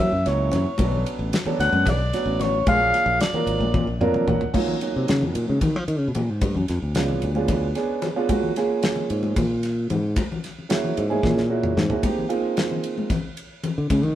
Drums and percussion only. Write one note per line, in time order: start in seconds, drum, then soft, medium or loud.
0.26 snare soft
0.26 ride medium
0.39 low conga soft
0.52 snare soft
0.52 ride medium
0.52 low conga loud
0.65 low conga soft
0.78 kick loud
0.78 ride medium
0.78 high conga loud
0.92 low conga medium
1.06 ride medium
1.32 snare loud
1.32 ride medium
1.32 low conga soft
1.45 low conga medium
1.60 snare soft
1.60 ride medium
1.72 high conga medium
1.86 kick loud
1.86 snare soft
1.86 ride medium
1.86 low conga loud
2.13 snare soft
2.13 ride medium
2.27 low conga soft
2.40 snare soft
2.40 ride medium
2.40 low conga loud
2.54 low conga soft
2.67 kick loud
2.67 ride medium
2.67 high conga loud
2.67 low conga soft
2.93 snare soft
2.93 ride medium
2.93 low conga soft
3.20 snare loud
3.20 ride medium
3.20 low conga soft
3.34 low conga medium
3.47 ride medium
3.61 high conga medium
3.61 low conga soft
3.74 kick loud
3.74 high tom medium
3.74 low conga loud
4.01 mid tom medium
4.14 mid tom medium
4.27 floor tom loud
4.27 low conga medium
4.41 floor tom medium
4.54 kick loud
4.54 crash loud
4.54 high conga loud
4.68 low conga medium
4.81 ride medium
5.08 snare loud
5.08 ride medium
5.21 low conga medium
5.35 ride medium
5.48 high conga medium
5.61 kick loud
5.61 ride medium
5.61 low conga loud
5.88 ride medium
6.15 ride medium
6.15 low conga loud
6.41 kick loud
6.41 ride medium
6.41 high conga loud
6.54 low conga medium
6.68 snare soft
6.68 ride medium
6.95 snare loud
6.95 ride medium
7.08 low conga medium
7.22 ride medium
7.35 high conga medium
7.48 kick loud
7.48 ride medium
7.48 low conga loud
7.75 snare soft
7.75 ride medium
8.02 snare soft
8.02 ride medium
8.02 low conga medium
8.29 kick loud
8.29 ride medium
8.29 high conga loud
8.43 low conga medium
8.56 snare soft
8.56 ride medium
8.83 snare loud
8.83 ride medium
8.96 low conga medium
9.10 ride medium
9.23 high conga medium
9.36 kick loud
9.36 ride medium
9.36 low conga loud
9.63 snare soft
9.63 ride medium
9.90 ride medium
9.90 low conga loud
10.16 kick loud
10.16 ride medium
10.16 high conga loud
10.16 low conga soft
10.32 low conga medium
10.44 snare soft
10.44 ride medium
10.44 low conga soft
10.59 low conga soft
10.70 snare loud
10.70 ride medium
10.84 low conga medium
10.97 ride medium
10.97 low conga soft
11.11 high conga medium
11.11 low conga soft
11.23 kick loud
11.23 snare medium
11.23 low conga loud
11.38 snare medium
11.63 mid tom medium
11.77 snare loud
11.77 low conga medium
11.90 floor tom medium
12.03 kick loud
12.03 ride medium
12.03 high conga medium
12.18 low conga medium
12.30 ride medium
12.57 snare loud
12.57 ride medium
12.71 low conga medium
12.84 ride medium
12.98 high conga medium
13.10 kick loud
13.10 snare soft
13.10 ride medium
13.10 low conga medium
13.37 ride medium
13.64 ride medium
13.64 low conga loud
13.90 kick loud
13.90 ride medium
13.90 high conga loud
14.03 low conga medium